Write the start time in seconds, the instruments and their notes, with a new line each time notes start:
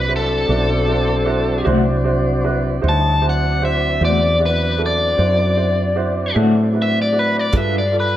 Already playing: fretless electric bass C2, tonewheel organ F#3 C4 D4, overdriven electric guitar B4
0.08 upright piano E4 F#4 C5
0.16 overdriven electric guitar A4
0.48 fretless electric bass B1, upright piano E4 F#4 D5
0.88 upright piano E4 F#4 C5
1.26 upright piano E4 F#4 C5
1.64 fretless electric bass C2, clean electric guitar D3 A3 C4 F#4, upright piano E4 F#4 C5
2.04 upright piano E4 F#4 C5
2.44 upright piano E4 F#4 B4
2.81 fretless electric bass D2, tonewheel organ G3 D#4 C#5, upright piano E4 F#4 C5
2.89 overdriven electric guitar A5
3.21 upright piano E4 F#4 C5
3.26 tonewheel organ F#3 C4 D4, overdriven electric guitar F#5
3.61 upright piano E4 F#4 C5, overdriven electric guitar E5
4.01 fretless electric bass E2, clean electric guitar D3 A3 C4 F#4, upright piano E4 F#4 C5, overdriven electric guitar D5
4.40 upright piano E4 F#4 D5
4.45 overdriven electric guitar B4
4.78 upright piano E4 F#4 A4
4.86 overdriven electric guitar D5
5.18 fretless electric bass F#2, upright piano E4 F#4 C5
5.57 upright piano E4 F#4 C5
5.96 upright piano E4 F#4 C5
6.34 fretless electric bass A2, clean electric guitar D3 A3 C4 F#4, upright piano E4 F#4 A4
6.73 upright piano E4 F#4 B4
6.82 overdriven electric guitar E5
7.02 overdriven electric guitar D5
7.13 upright piano E4 F#4 D5
7.19 overdriven electric guitar B4
7.39 overdriven electric guitar D5
7.52 fretless electric bass G2, clean electric guitar G3 D4 F4 B4, tonewheel organ G#3 F#4 C5, upright piano F4 A4 B4, kick, closed hi-hat
7.57 overdriven electric guitar E5
7.78 overdriven electric guitar D5
7.92 tonewheel organ G3 F4 B4, upright piano F4 A4 D5
8.00 overdriven electric guitar B4